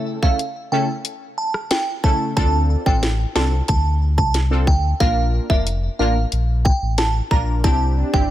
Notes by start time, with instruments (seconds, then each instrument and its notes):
Already playing: synth stab C#3 A3 C#4 E4 A4
0.22 synth stab C#3 A3 C#4 E4 A4, synth bell F5, kick
0.39 closed hi-hat
0.72 synth stab C#3 A3 C#4 E4 A4, synth bell G5
1.05 closed hi-hat
1.38 synth bell A5
1.54 cross-stick
1.71 synth bell G5, snare, closed hi-hat
2.04 synth stab C#3 A3 C#4 E4 A4, synth bell A5, kick
2.36 sub bass D2, synth stab C4 D4 F4 A4, synth bell A5, kick, closed hi-hat
2.86 sub bass A1, synth stab C4 D4 F4 A4, synth bell G5, kick
3.03 snare, closed hi-hat
3.35 sub bass C2, synth stab C4 D4 F4 A4, synth bell A5, snare
3.68 sub bass D2, synth bell A5, kick, closed hi-hat
4.18 sub bass C2, synth bell A5, kick
4.34 snare, closed hi-hat
4.51 synth stab C4 D4 F4 A4
4.67 sub bass D2, synth bell G5, kick
5.00 sub bass A#1, synth stab A#3 D4 F4 A#4, synth bell F5, kick, closed hi-hat
5.50 sub bass F1, synth stab A#3 D4 F4 A#4, synth bell E5, kick
5.67 closed hi-hat
5.99 sub bass A1, synth stab A#3 D4 F4 A#4, synth bell F5
6.32 sub bass A#1, closed hi-hat
6.65 synth bell G5, kick
6.82 sub bass A1
6.98 synth bell A5, snare, closed hi-hat
7.31 sub bass A#1, synth stab A#3 D4 F4 A#4, synth bell A#5, kick
7.64 sub bass C2, synth stab C4 D4 E4 G4, synth bell A5, kick, closed hi-hat, swell
8.13 sub bass G1, synth stab C4 D4 E4 G4, synth bell G5, kick